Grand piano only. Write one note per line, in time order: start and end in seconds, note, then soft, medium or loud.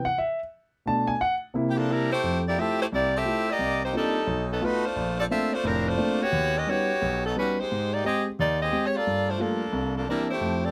0.05 0.17 F#5 medium
0.18 0.39 E5 medium
0.86 1.11 B2 medium
0.86 1.11 A3 soft
0.86 1.12 D4 medium
0.86 1.07 A5 medium
1.07 1.20 G#5 medium
1.21 1.34 F#5 medium
1.54 2.07 C3 medium
1.54 2.07 A#3 medium
1.54 2.07 E4 medium
2.24 2.52 F2 medium
2.58 2.80 A3 medium
2.58 2.80 E4 soft
2.58 2.80 F4 soft
2.58 2.80 G4 medium
2.92 3.21 C2 medium
3.25 3.48 A3 medium
3.25 3.48 E4 soft
3.25 3.48 F4 soft
3.25 3.48 G4 medium
3.59 3.88 C2 medium
3.93 4.16 A#3 soft
3.93 4.16 C4 soft
3.93 4.16 D4 soft
3.93 4.16 D#4 soft
3.93 4.16 F4 medium
4.27 4.56 B1 medium
4.61 4.84 A3 medium
4.61 4.84 B3 medium
4.61 4.84 D#4 medium
4.61 4.84 F4 medium
4.96 5.25 A#1 medium
5.30 5.53 A3 medium
5.30 5.53 A#3 medium
5.30 5.53 C4 soft
5.30 5.53 D4 medium
5.64 5.93 F1 medium
5.64 5.93 A2 medium
5.98 6.21 A3 medium
5.98 6.20 A#3 medium
5.98 6.21 C4 medium
5.98 6.21 D4 medium
6.32 6.62 D#2 medium
6.67 6.89 G3 medium
6.67 6.89 B3 medium
6.67 6.90 C#4 soft
6.67 6.90 D#4 medium
7.02 7.30 B1 medium
7.36 7.58 G3 medium
7.36 7.58 B3 medium
7.36 7.58 C#4 soft
7.36 7.58 D#4 medium
7.72 7.99 G#2 medium
8.05 8.26 G#3 medium
8.05 8.26 C4 medium
8.05 8.26 G4 medium
8.39 8.67 D#2 medium
8.72 8.94 G#3 medium
8.72 8.94 C4 medium
8.72 8.94 G4 medium
9.07 9.35 G2 medium
9.38 9.61 G3 medium
9.38 9.61 A3 medium
9.38 9.62 A#3 soft
9.38 9.61 F4 medium
9.73 10.02 C2 medium
10.09 10.31 E3 medium
10.09 10.31 A#3 medium
10.09 10.31 C4 soft
10.09 10.31 D4 medium
10.41 10.70 F2 medium
10.41 10.70 A3 medium